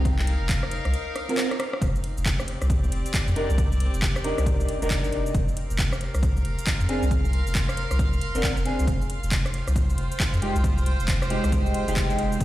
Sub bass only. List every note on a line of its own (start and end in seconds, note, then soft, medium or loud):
0.00 0.36 C2 loud
0.41 0.80 F1 loud
0.85 0.93 C2 medium
1.82 1.92 F1 medium
2.17 2.56 F1 medium
2.62 2.89 C2 medium
2.92 3.03 F1 medium
3.28 3.34 F2 loud
3.50 3.89 C2 loud
3.94 4.33 F1 medium
4.38 4.65 C2 medium
4.82 5.06 F1 medium
5.04 5.14 A#1 medium
5.13 5.31 F1 medium
5.35 5.45 F1 loud
5.70 6.09 F1 loud
6.14 6.42 C2 medium
6.45 6.55 F1 loud
6.81 6.87 F2 loud
7.03 7.42 C2 loud
7.47 7.86 F1 medium
7.91 8.18 C2 medium
8.35 8.41 F1 medium
8.57 8.64 F1 medium
8.79 8.86 C2 medium
8.87 8.98 F1 medium
9.23 9.62 F1 loud
9.67 9.95 C2 medium
9.98 10.08 F1 loud
10.34 10.40 F2 loud
10.56 10.95 C2 loud
11.00 11.39 F1 loud
11.44 11.71 C2 medium
11.88 12.12 F1 medium
12.10 12.20 A#1 medium
12.18 12.37 F1 medium
12.40 12.45 F1 loud